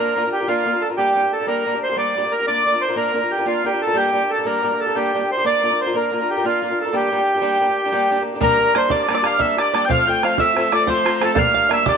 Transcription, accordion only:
0.00 0.29 A#4 medium
0.32 0.48 G4 medium
0.48 0.83 F4 medium
0.81 0.88 A4 medium
0.97 1.32 G4 loud
1.33 1.46 A4 medium
1.48 1.79 A#4 medium
1.83 1.96 C5 medium
1.98 2.32 D5 medium
2.32 2.46 A#4 medium
2.48 2.82 D5 loud
2.81 2.95 C5 medium
2.97 3.32 A#4 medium
3.31 3.46 G4 medium
3.47 3.65 F4 medium
3.66 3.81 G4 medium
3.82 3.97 A4 medium
3.96 4.31 G4 loud
4.30 4.46 A4 medium
4.46 4.81 A#4 medium
4.80 4.96 A4 medium
4.96 5.30 G4 medium
5.31 5.45 C5 medium
5.46 5.80 D5 loud
5.81 5.96 C5 medium
5.97 6.30 A#4 medium
6.30 6.45 G4 medium
6.45 6.79 F4 medium
6.81 6.95 A4 medium
6.95 8.23 G4 medium
8.43 8.77 A#4 loud
8.77 8.92 C5 medium
8.91 9.01 D5 medium
9.02 9.14 D5 medium
9.16 9.26 D5 medium
9.26 9.41 F5 medium
9.40 9.59 E5 medium
9.58 9.73 D5 medium
9.74 9.85 D5 medium
9.85 9.89 G5 medium
9.90 10.09 F5 loud
10.09 10.24 G5 medium
10.25 10.40 F5 medium
10.40 10.74 E5 medium
10.74 10.89 D5 medium
10.88 11.23 C5 medium
11.23 11.38 A4 medium
11.38 11.72 F5 loud
11.73 11.88 E5 medium
11.88 11.97 D5 medium

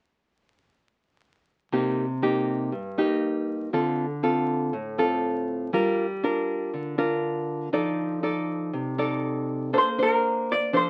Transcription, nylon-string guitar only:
1.72 2.70 C3 medium
1.72 2.04 A#3 soft
1.72 2.05 D#4 soft
1.72 2.05 G4 soft
2.22 2.72 A#3 soft
2.22 2.72 D#4 soft
2.22 2.72 G4 medium
2.72 3.70 G2 medium
2.98 3.69 A#3 medium
2.98 3.69 D#4 medium
2.98 3.69 G4 medium
3.73 4.70 D3 medium
3.73 4.05 C4 soft
3.73 4.05 F4 soft
3.73 4.05 A4 medium
4.23 4.73 C4 soft
4.23 4.73 F4 soft
4.23 4.73 A4 soft
4.73 5.71 A2 medium
4.98 5.69 C4 medium
4.98 5.69 F4 medium
4.98 5.70 A4 medium
5.73 6.71 G3 medium
5.73 6.05 D4 soft
5.73 6.06 F4 soft
5.73 6.06 A#4 medium
6.24 6.94 D4 medium
6.24 6.94 F4 soft
6.24 6.95 A#4 soft
6.74 7.71 D3 medium
6.98 7.69 D4 medium
6.98 7.69 F4 medium
6.98 7.69 A#4 medium
7.73 8.71 F3 medium
7.73 8.19 D#4 soft
7.73 8.19 A4 soft
7.73 8.19 D5 medium
8.23 8.94 D#4 medium
8.23 8.94 A4 medium
8.23 8.94 D5 medium
8.73 9.71 C3 medium
8.98 9.69 D#4 medium
8.98 9.69 A4 soft
8.98 9.70 D5 medium
9.73 10.70 A#3 medium
9.73 9.88 D4 soft
9.73 9.88 A4 medium
9.73 9.88 C5 soft
9.98 10.69 D4 medium
9.98 10.69 C5 medium
10.73 10.90 F3 medium
10.73 10.90 D4 soft
10.73 10.90 A4 soft
10.73 10.90 C5 medium

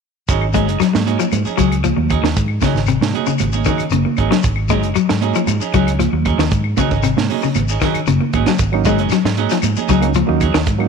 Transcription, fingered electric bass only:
0.29 0.69 G#1 medium
0.69 0.79 F#1 medium
0.95 1.16 G#2 medium
1.32 1.43 G#2 medium
1.46 muted fingered electric bass stroke soft
1.59 1.91 C#2 medium
1.97 2.19 D#2 medium
2.23 2.33 D#2 medium
2.37 2.58 G#2 medium
2.75 2.96 G#1 medium
3.01 3.11 G#2 medium
3.28 muted fingered electric bass stroke soft
3.40 3.61 G#1 medium
3.80 muted fingered electric bass stroke soft
3.92 4.03 F#1 medium
4.18 4.29 G#1 medium
4.44 4.84 G#1 medium
4.84 4.94 F#1 medium
5.10 5.31 G#2 medium
5.47 5.59 G#2 medium
5.61 muted fingered electric bass stroke soft
5.74 6.06 C#2 medium
6.13 6.34 D#2 medium
6.38 6.49 D#2 medium
6.52 6.73 G#2 medium
6.92 7.13 G#1 medium
7.17 7.28 G#2 medium
7.44 muted fingered electric bass stroke soft
7.55 7.77 G#1 medium
7.95 muted fingered electric bass stroke soft
8.07 8.18 F#1 loud
8.34 8.45 G#1 medium
8.59 8.99 G#1 medium
8.99 9.09 F#1 medium
9.25 9.46 G#2 medium
9.63 9.74 G#2 medium
9.76 muted fingered electric bass stroke soft
9.89 10.21 C#2 medium
10.29 10.50 D#2 medium
10.54 10.65 D#2 medium
10.67 10.88 G#2 medium

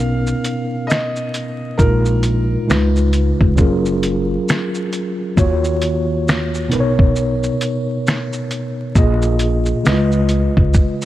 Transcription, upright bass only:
0.00 0.31 B1 medium
1.79 2.55 A#1 loud
2.70 3.30 C#2 medium
3.41 3.56 C#2 medium
3.59 4.34 F#1 medium
5.38 6.68 D#2 loud
6.73 7.48 B1 medium
8.96 9.71 A#1 loud
9.86 10.46 C#2 medium
10.58 10.72 C#2 medium

